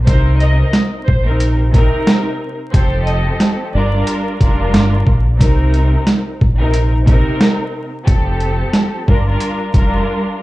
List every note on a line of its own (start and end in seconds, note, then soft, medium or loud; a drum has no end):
0.05 0.62 C2 loud
0.05 0.99 C3 medium
0.05 0.99 C4 medium
0.05 1.00 D#4 medium
0.05 1.00 A#4 loud
0.05 0.37 C5 loud
0.05 kick loud
0.05 closed hi-hat medium
0.40 0.71 D#5 medium
0.40 closed hi-hat soft
0.73 snare loud
0.73 closed hi-hat medium
1.06 1.89 A#1 medium
1.06 1.23 C5 medium
1.06 kick medium
1.24 1.56 C3 medium
1.24 1.56 C4 medium
1.24 1.56 D#4 medium
1.24 1.56 A#4 loud
1.40 closed hi-hat medium
1.73 2.51 C3 loud
1.73 2.52 C4 medium
1.73 2.52 D#4 loud
1.73 2.52 A#4 loud
1.73 kick loud
1.73 closed hi-hat medium
2.07 snare loud
2.07 closed hi-hat medium
2.72 3.29 F1 loud
2.72 3.66 F3 loud
2.72 3.66 C4 medium
2.72 3.66 G4 medium
2.72 3.67 A4 loud
2.72 3.04 C5 loud
2.72 kick loud
2.72 closed hi-hat loud
3.06 3.37 D#5 medium
3.06 closed hi-hat soft
3.40 snare loud
3.40 closed hi-hat medium
3.73 4.02 G1 medium
3.73 3.92 G3 medium
3.73 3.92 D4 medium
3.73 3.93 F4 medium
3.73 3.93 A#4 loud
3.73 3.91 D5 medium
3.93 4.37 G3 loud
3.93 4.37 D4 medium
3.93 4.38 F4 medium
3.93 4.38 A#4 loud
4.07 closed hi-hat medium
4.41 4.75 F1 medium
4.41 5.19 G3 loud
4.41 5.19 D4 medium
4.41 5.19 F4 loud
4.41 5.20 A#4 loud
4.41 kick loud
4.41 closed hi-hat medium
4.74 5.02 G1 medium
4.74 snare loud
4.74 closed hi-hat medium
5.07 5.41 A#1 medium
5.07 kick medium
5.38 5.96 C2 loud
5.38 6.32 C3 medium
5.38 6.33 C4 medium
5.38 6.33 D#4 medium
5.38 6.33 A#4 loud
5.38 kick loud
5.38 closed hi-hat loud
5.74 closed hi-hat soft
6.07 snare loud
6.07 closed hi-hat medium
6.41 7.23 A#1 medium
6.41 kick loud
6.58 6.89 C3 medium
6.58 6.89 C4 medium
6.58 6.90 D#4 medium
6.58 6.90 A#4 loud
6.74 closed hi-hat medium
7.06 7.85 C3 loud
7.06 7.85 C4 medium
7.06 7.85 D#4 loud
7.06 7.86 A#4 loud
7.06 kick loud
7.06 closed hi-hat medium
7.41 snare loud
7.41 closed hi-hat medium
8.05 8.63 F1 loud
8.05 8.99 F3 medium
8.05 8.99 C4 medium
8.05 9.00 G4 medium
8.05 9.00 A4 loud
8.05 kick loud
8.05 closed hi-hat medium
8.40 closed hi-hat soft
8.73 snare loud
8.73 closed hi-hat medium
9.07 9.35 G1 loud
9.07 9.25 G3 medium
9.07 9.25 D4 medium
9.07 9.26 F4 medium
9.07 9.27 A#4 loud
9.07 kick medium
9.26 9.70 G3 medium
9.26 9.71 D4 medium
9.26 9.71 F4 medium
9.26 9.71 A#4 loud
9.40 closed hi-hat medium
9.74 10.02 F1 medium
9.74 10.43 G3 loud
9.74 10.43 D4 medium
9.74 10.43 F4 loud
9.74 10.43 A#4 loud
9.74 kick loud
9.74 closed hi-hat medium